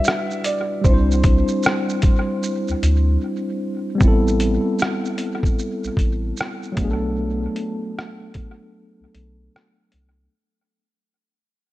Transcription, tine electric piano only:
0.00 0.39 G3 medium
0.00 0.41 D4 medium
0.00 0.42 E4 medium
0.00 0.44 F#4 medium
0.00 0.45 B4 medium
0.81 3.94 G3 medium
0.81 3.96 C4 medium
0.87 3.98 D4 medium
0.87 3.99 E4 medium
0.94 4.01 C5 medium
3.95 6.70 G3 medium
3.95 6.72 B3 medium
4.02 6.73 C4 medium
4.02 6.75 E4 medium
4.08 6.76 A4 medium
6.72 9.86 F#3 medium
6.72 9.88 A3 medium
6.78 9.89 B3 medium
6.78 9.91 D4 medium
6.85 6.89 G#4 medium
6.91 9.96 A4 medium

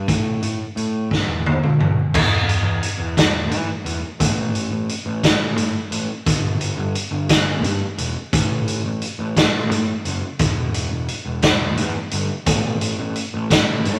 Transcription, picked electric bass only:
0.08 0.39 A2 medium
0.43 0.58 A2 medium
0.76 1.07 A2 medium
1.27 1.58 E2 medium
1.79 1.95 B1 medium
2.14 2.62 E2 medium
2.63 2.80 E2 medium
2.98 3.52 E2 medium
3.50 3.66 E3 medium
3.85 4.01 E2 medium
4.20 4.68 A1 medium
4.72 4.87 A1 medium
5.06 5.57 A1 medium
5.57 5.73 A2 medium
5.91 6.07 A1 medium
6.26 6.74 G1 medium
6.77 6.93 G1 medium
7.11 7.63 G1 medium
7.63 7.79 G2 medium
7.98 8.14 E1 medium
8.33 8.81 A1 medium
8.84 9.00 A1 medium
9.19 9.70 A1 medium
9.70 9.86 A2 medium
10.05 10.21 F#1 medium
10.39 10.87 E1 medium
10.91 11.07 E1 medium
11.25 11.78 E1 medium
11.77 11.93 E2 medium
12.12 12.28 G1 medium
12.46 12.94 A1 medium
12.99 13.14 A1 medium
13.34 13.87 A1 medium
13.86 13.99 A2 medium

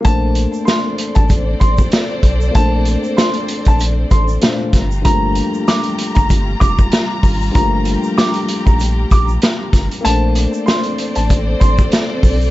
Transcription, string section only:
0.05 4.70 C4 medium
0.05 4.70 A4 medium
0.05 4.70 C5 medium
0.05 4.70 D5 medium
4.74 10.01 G3 medium
4.74 10.01 F4 medium
4.74 7.21 G4 medium
4.74 10.01 A#5 medium
7.22 10.02 G4 medium
10.05 12.51 C4 medium
10.05 12.51 A4 medium
10.05 12.51 C5 medium
10.05 12.51 D5 medium

